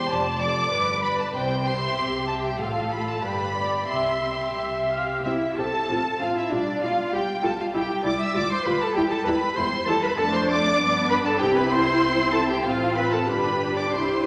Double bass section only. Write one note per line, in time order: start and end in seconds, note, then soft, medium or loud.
0.10 0.65 F1 medium
0.73 1.27 G1 medium
1.34 1.91 C2 medium
1.98 2.53 C2 medium
2.60 3.16 A1 medium
3.23 3.81 G1 soft
3.88 4.48 C2 soft
4.56 5.16 C2 soft
5.24 5.32 C2 medium
5.57 5.65 C2 soft
5.90 5.98 A1 soft
6.21 6.29 A1 soft
6.52 6.60 B1 medium
6.82 6.90 B1 medium
7.13 7.21 B1 medium
7.44 7.52 B1 medium
7.74 7.82 C2 medium
8.05 8.13 C2 medium
8.35 8.43 D2 medium
8.65 8.73 D2 medium
8.95 9.03 E2 medium
9.26 9.34 E2 medium
9.56 9.64 E2 medium
9.87 9.95 E2 medium
10.17 10.74 F2 medium
10.78 11.40 G2 medium
11.40 12.64 C2 medium
12.65 13.24 A1 medium
13.28 13.94 G1 medium
13.94 14.27 C2 medium